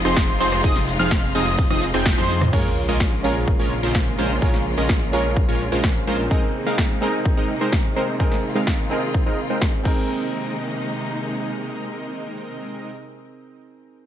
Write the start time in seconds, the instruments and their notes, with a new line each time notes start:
Already playing: string section C3 F3 G#3 D#4 F4
0.05 detuned saw bass F1, supersaw synth F3 C4 D#4 G#4 C5, digital synth lead C6, cross-stick, shaker
0.17 kick, snare, ride, shaker
0.29 shaker
0.40 detuned saw bass F1, supersaw synth F3 C4 D#4 G#4 C5, digital synth lead C6, open hi-hat, shaker
0.52 cross-stick, shaker
0.64 detuned saw bass F1, supersaw synth F3 C4 D#4 G#4 D#5, digital synth lead D#6, kick, ride, shaker
0.76 snare, shaker
0.88 open hi-hat, shaker
0.99 detuned saw bass F1, supersaw synth F3 C4 D#4 G#4 F5, digital synth lead F6, shaker
1.11 kick, snare, ride, shaker
1.24 shaker
1.35 detuned saw bass F1, supersaw synth F3 C4 D#4 G#4 D#5, digital synth lead D#6, open hi-hat, shaker
1.47 shaker
1.59 kick, ride, shaker
1.70 detuned saw bass F1, supersaw synth F3 C4 D#4 G#4 D#5, digital synth lead D#6, cross-stick, open hi-hat, shaker
1.82 open hi-hat, shaker
1.94 detuned saw bass F1, supersaw synth F3 C4 D#4 G#4 G5, digital synth lead G6, cross-stick, shaker
2.06 kick, snare, high tom, ride, shaker
2.18 detuned saw bass F2, supersaw synth F3 C4 D#4 G#4 C5, digital synth lead C6, high tom, shaker
2.30 open hi-hat, shaker
2.41 cross-stick, mid tom, shaker
2.52 detuned saw bass A#1, string section C#3 F3 G#3 A#3 F4, supersaw synth G#3 C#4 F4 A#4 C#5, grand piano C#4 F4 G#4 A#4, kick, crash, sub drop
2.89 detuned saw bass A#1, supersaw synth G#3 C#4 F4 A#4 D#5
3.00 kick, snare
3.23 detuned saw bass A#1, supersaw synth G#3 C#4 F4 A#4 C#5, grand piano C#4 F4 G#4 A#4
3.48 kick
3.59 detuned saw bass A#1, supersaw synth G#3 C#4 F4 A#4 C#5
3.83 detuned saw bass A#1, supersaw synth G#3 C#4 F4 A#4 C5
3.95 kick, snare
4.19 detuned saw bass A#1, supersaw synth G#3 C#4 F4 A#4 C5
4.41 detuned saw bass A#1, supersaw synth G#3 C#4 F4 A#4 C#5, grand piano C#4 F4 G#4 A#4, kick
4.54 snare
4.78 detuned saw bass A#1, supersaw synth G#3 C#4 F4 A#4 D#5
4.89 kick, snare
5.12 detuned saw bass A#1, supersaw synth G#3 C#4 F4 A#4 C#5, grand piano C#4 F4 G#4 A#4
5.37 kick
5.48 detuned saw bass A#1, supersaw synth G#3 C#4 F4 A#4 C#5
5.72 detuned saw bass A#1, supersaw synth G#3 C#4 F4 A#4 C5
5.84 kick, snare
6.07 detuned saw bass A#1, supersaw synth G#3 C#4 F4 A#4 C5
6.30 string section C3 D#3 A#3 D#4, supersaw synth G#3 C4 D#4 A#4 D#5, grand piano C4 D#4 G#4 A#4, kick
6.67 supersaw synth G#3 C4 D#4 A#4 F5
6.78 kick, snare
7.01 supersaw synth G#3 C4 D#4 A#4 D#5, grand piano C4 D#4 G#4 A#4
7.25 kick
7.37 supersaw synth G#3 C4 D#4 A#4 D#5
7.61 supersaw synth G#3 C4 D#4 A#4 C5
7.72 kick, snare
7.96 supersaw synth G#3 C4 D#4 A#4 C5
8.19 supersaw synth G#3 C4 D#4 A#4 D#5, grand piano C4 D#4 G#4 A#4, string section F4, kick
8.32 snare
8.55 supersaw synth G#3 C4 D#4 A#4 F5
8.67 kick, snare
8.90 supersaw synth G#3 C4 D#4 A#4 D#5, grand piano C4 D#4 G#4 A#4
9.14 kick
9.26 supersaw synth G#3 C4 D#4 A#4 D#5
9.50 supersaw synth G#3 C4 D#4 A#4 C5
9.62 kick, snare
9.84 string section C3 D#3 G#3 A#3 D#4, supersaw synth G#3 C4 D#4 A#4 D#5, grand piano C4 D#4 G#4 A#4, kick, crash